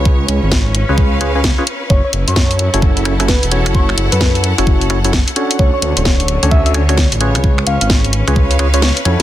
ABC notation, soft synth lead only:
X:1
M:4/4
L:1/16
Q:"Swing 16ths" 1/4=130
K:F#m
V:1 name="Soft synth lead"
z16 | c c z c4 z4 z B z3 | c z2 B3 z8 z2 | c c z c4 z e e z c c z3 |
z2 ^e e z6 z c z4 |]